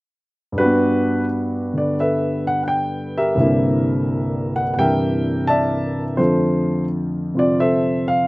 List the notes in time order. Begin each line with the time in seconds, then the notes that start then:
0.52 G2 G3
0.58 D4 F#4 B4
0.64 B3
1.74 D3
1.78 D5
2.00 A4 B4 E5
2.47 F#5
2.63 F#5
2.68 G5
3.18 G4 A#4 E5
3.35 C2 G2 D3 C4
3.39 A#3 E4
4.56 F#5
4.74 G2 C3 F#5
4.79 E3 G3 D4 A#4 E5 G5
5.47 D5 E5 A5
6.17 F2 D3 F3 A3 A4 C5
7.34 C3 C4 F4
7.39 D5
7.60 A4 C5 E5
8.08 F5